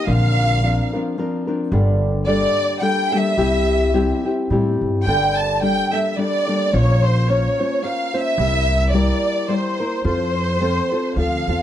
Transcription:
0.07 A#1 A#2 D3 F3 C4 D4 A#4 F5
0.63 F3 C4 D4 A#4
0.93 F3 C4 D4 A#4
1.18 F3 C4 D4 A#4
1.47 F3 C4 D4 A#4
1.72 G1 G2 D3 G3 A#3 D4 A4
2.27 G3 A#3 D4 A4 D5
2.81 G3 A#3 D4 A4 G5
3.12 G3 A#3 D4 A4 E5
3.37 C2 C3 G3 C4 E4 G4
3.94 G3 C4 E4 G4
4.25 C4 E4 G4
4.50 A2 G3 C4 E4 G4
4.81 G2
5.05 G1 G2 D3 G3 A#3 D4 A4 G5
5.37 A5
5.62 G3 A#3 D4 A4 G5
5.92 G3 A#3 D4 A4 E5
6.17 G3 A#3 D4 A4 D5
6.47 G3 A#3 D4 A4
6.73 A#1 A#2 F3 A#3 C#4 F4 C5 C#5
7.04 C5
7.29 A#3 C#4 F4 C5 C#5
7.60 A#3 C#4 F4 C5
7.83 A#3 C#4 F4 C5 F5
8.14 A#3 C#4 F4 C5
8.20 E5
8.38 C2 C3 G3 A#3 E4 A#4
8.93 G3 A#3 E4 A#4 D5
9.48 G3 A#3 E4 A#4 C5
9.80 A#3 E4 A#4
10.04 F2 F3 C4 F4 A4 C5
10.60 F3 C4 F4 A4
10.92 C4 F4 A4
11.16 D2 F3 C4 F4 A4 F5
11.47 E2 C4 F4 A4

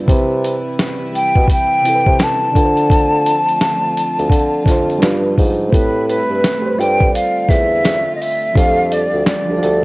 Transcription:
Already playing: G3 D4 F4
0.06 C3 E3 C4 E4 B4, kick, closed hi-hat
0.10 E4 B4
0.44 closed hi-hat
0.79 snare, closed hi-hat
1.15 G5, closed hi-hat
1.35 B2, kick
1.48 kick, closed hi-hat
1.52 G5
1.82 C3 C4, closed hi-hat
1.87 E4 A4
1.95 B4
2.06 C3, kick
2.19 snare, closed hi-hat
2.23 A5
2.51 D3 A3 D4
2.55 D3 F3 C4 F4 B4, kick, closed hi-hat
2.65 C5
2.77 closed hi-hat
2.90 kick, closed hi-hat
3.26 closed hi-hat
3.49 closed hi-hat
3.61 snare, closed hi-hat
3.97 closed hi-hat
4.19 D2, closed hi-hat
4.30 D3, kick, closed hi-hat
4.64 F2 D3 D4, kick, snare, closed hi-hat
4.69 F4 C5
4.90 closed hi-hat
4.98 G2 D3 F3 G3 B3 D4, closed hi-hat
5.03 F4 B4, snare
5.38 G#2, kick, open hi-hat
5.69 A2 C3 G3 A3 E4 G4 B4 C5, kick
5.73 C4 B4, closed hi-hat
6.09 B4, closed hi-hat
6.30 G2
6.44 snare, closed hi-hat
6.59 A3 G4
6.64 G2 B4 C5
6.77 G2 D3 G3 C4 F4 A4 G5, closed hi-hat
6.82 C5 D5
7.01 kick
7.15 F5, closed hi-hat
7.49 E2 E5, kick, snare, closed hi-hat
7.85 snare, closed hi-hat
8.16 D#5
8.21 E5, open hi-hat
8.53 F2 D3 F3 G3 D4 F5, kick
8.57 G4 A4, closed hi-hat
8.92 D5, closed hi-hat
9.14 D2
9.26 D5, snare, closed hi-hat
9.46 D2 F3 D4
9.50 G4 A4
9.58 F3 D4
9.62 D2 G4 A4, closed hi-hat

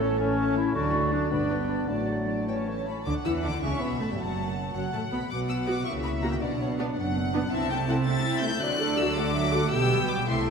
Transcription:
Already playing: A1 A2 A3 C#4 A4 C#5
0.01 C#4 C#5 A5
0.19 A3 C#4 A4 C#5 E5
0.38 C#4 C#5 A5
0.56 A3 E4 A4 E5
0.74 D2 D3 F#3 A3 D4 F#4 D5 A5
0.93 A3 A4 F#5
1.12 F#3 D4 D5 A5
1.31 G1 G2 B3 D4 D5 B5
1.51 B3 B4 G5
1.69 D4 D5 B5
1.89 A1 A2 F#3 A3 D4 D5 A5
2.09 A3 A4 F#5
2.28 F#3 D5 A5
2.48 E3 C#4 C#5 G5 A5
2.67 A3 A4 E5 A5
2.87 C#4 C#5 A5 B5
3.06 D2 D3 D4 F#5 D6
3.25 E2 E3 E4 E6
3.43 D2 D3 D4 D6
3.62 C#2 C#3 C#4 E5 C#6
3.81 B1 B2 B3 B5
4.00 A1 A2 A3 A5
4.10 G2 G3 G5
4.18 F#1 F#2 F#3 F#5 A5
4.74 F#1 F#2 F#3 F#5
4.93 A1 A2 A3 A5
5.11 B1 B2 B3 B5
5.30 B1 B2 B3 F#4 F#5 D6
5.49 E6
5.66 B3 F#4 D6
5.85 C#2 C#3 A#3 E4 E5 C#6
6.03 B5
6.22 A#3 F#4 A#5
6.32 G5
6.41 B1 B2 B3 D4 D5 F#5
6.60 C#5
6.79 B3 D4 D5
6.96 F#1 F#2 F#5
7.34 B3 D4
7.52 C2 C3 C4 E4 E5 A5
7.70 A3 C4 G5
7.89 A3 C4 E4 F#5
8.06 A3 C4 E5 A6
8.26 C4 E4
8.43 A3 C4 E4 G6
8.61 D2 D3 F#3 F#4 D5 F#6
8.81 A3 A4
8.97 F#3 A3 F#4 E6
9.16 A3 A4 F#5 D6
9.35 F#3 F#4 E5
9.53 A3 F#4 A4 F#5
9.72 B1 B2 G3 B3 G4 G5 E6
10.00 F#4
10.10 D6
10.27 C2 C3 A3 E4 A4 E5 C6

